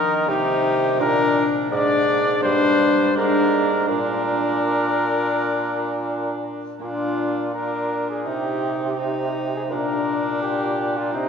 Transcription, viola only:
0.00 0.28 D#4 medium
0.29 1.01 D#4 medium
1.00 1.72 D4 medium
1.72 2.43 D4 medium
2.44 3.15 D4 medium
3.17 3.88 D4 medium
3.89 6.57 D4 medium
6.81 7.50 D4 medium
7.55 8.25 D4 medium
8.26 8.97 D#4 medium
8.98 9.73 D#4 medium
9.72 11.16 D4 medium
11.15 11.29 C4 medium

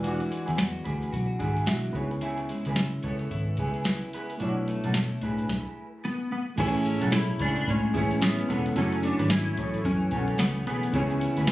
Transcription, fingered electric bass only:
0.00 0.21 E1 medium
0.48 0.57 E2 medium
0.59 0.81 E2 medium
0.86 1.08 D2 medium
1.13 1.35 B1 medium
1.40 1.62 G#1 medium
1.68 1.89 B1 medium
1.94 2.51 C#2 medium
2.66 2.74 C#2 medium
2.76 2.98 C#3 medium
3.04 3.25 C#2 medium
3.31 3.53 G#1 medium
3.58 4.02 C#2 medium
4.40 4.75 B1 medium
4.84 4.93 B1 medium
4.95 5.17 B2 medium
5.22 5.44 A2 medium
6.58 6.93 A1 medium
7.02 7.32 B1 loud
7.40 7.62 C#2 medium
7.67 7.89 A2 loud
7.95 8.38 A1 medium
8.49 8.71 E1 medium
8.76 9.11 F#1 loud
9.19 9.50 G#1 loud
9.58 9.79 A1 loud
9.85 10.06 F#2 loud
10.12 10.34 B1 medium
10.39 10.66 C#2 loud
10.66 10.88 B1 loud
10.93 11.28 C#2 loud
11.37 11.52 D2 loud

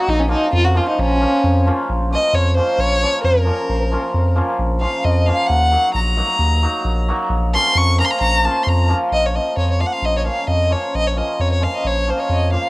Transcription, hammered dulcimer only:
0.00 0.13 F#3 medium
0.28 0.73 F3 medium
0.28 0.46 A#3 medium
0.28 0.46 C#4 medium
0.28 0.46 F4 medium
0.75 1.19 F3 medium
0.75 0.91 A#3 medium
0.75 0.92 C#4 medium
0.75 0.92 F4 medium
1.20 1.65 F3 medium
1.20 1.37 A#3 medium
1.20 1.37 C#4 medium
1.20 1.37 F4 medium
1.66 1.94 F3 medium
1.66 1.82 A#3 medium
1.66 1.83 C#4 medium
1.66 1.83 F4 medium
2.10 2.55 F3 medium
2.10 2.27 A#3 medium
2.10 2.28 C#4 medium
2.10 2.28 F4 medium
2.56 3.01 F3 medium
2.56 2.73 A#3 medium
2.56 2.73 C#4 medium
2.56 2.73 F4 medium
3.02 3.44 F3 medium
3.02 3.18 A#3 medium
3.02 3.19 C#4 medium
3.02 3.18 F4 medium
3.45 3.90 F3 medium
3.45 3.62 A#3 medium
3.45 3.63 C#4 medium
3.45 3.63 F4 medium
3.91 4.34 F3 medium
3.91 4.08 A#3 medium
3.91 4.08 C#4 medium
3.91 4.08 F4 medium
4.35 4.80 F3 medium
4.35 4.52 A#3 medium
4.35 4.53 C#4 medium
4.35 4.53 F4 medium
4.81 5.26 F3 medium
4.81 4.98 A#3 soft
4.81 4.98 C#4 medium
4.81 4.99 F4 medium
5.27 5.55 F3 medium
5.27 5.43 A#3 medium
5.27 5.44 C#4 medium
5.27 5.44 F4 medium
5.71 6.15 F#3 medium
5.71 5.88 A#3 medium
5.71 5.89 D#4 soft
5.71 5.89 F#4 medium
6.16 6.61 F#3 medium
6.16 6.33 A#3 medium
6.16 6.34 D#4 medium
6.16 6.34 F#4 medium
6.63 7.07 F#3 medium
6.63 6.79 A#3 medium
6.63 6.79 D#4 medium
6.63 6.80 F#4 medium
7.08 7.36 F#3 medium
7.08 7.24 A#3 medium
7.08 7.25 D#4 medium
7.08 7.25 F#4 medium
7.54 7.97 F3 medium
7.54 7.70 A#3 medium
7.54 7.70 C#4 medium
7.54 7.70 F4 medium
7.98 8.42 F3 medium
7.98 8.14 A#3 medium
7.98 8.15 C#4 medium
7.98 8.15 F4 medium
8.43 8.87 F3 medium
8.43 8.60 A#3 medium
8.43 8.60 C#4 medium
8.43 8.61 F4 medium
8.89 9.17 F3 medium
8.89 9.05 A#3 medium
8.89 9.05 C#4 medium
8.89 9.06 F4 medium
9.34 9.78 F3 medium
9.34 9.51 A#3 soft
9.34 9.51 C#4 soft
9.34 9.51 F4 soft
9.79 10.23 F3 medium
9.79 9.96 A#3 soft
9.79 9.96 C#4 soft
9.79 9.97 F4 medium
10.24 10.69 F3 soft
10.24 10.41 A#3 medium
10.24 10.42 C#4 medium
10.24 10.42 F4 soft
10.70 11.14 F3 medium
10.70 10.87 A#3 medium
10.70 10.87 C#4 medium
10.70 10.87 F4 medium
11.16 11.59 F3 soft
11.16 11.32 A#3 soft
11.16 11.33 C#4 medium
11.16 11.33 F4 medium
11.60 12.06 F3 medium
11.60 11.78 A#3 soft
11.60 11.78 C#4 medium
11.60 11.78 F4 medium
12.07 12.50 F3 medium
12.07 12.24 A#3 soft
12.07 12.24 C#4 medium
12.07 12.24 F4 medium
12.52 12.69 F3 medium
12.52 12.69 A#3 medium
12.52 12.69 C#4 soft
12.52 12.69 F4 medium

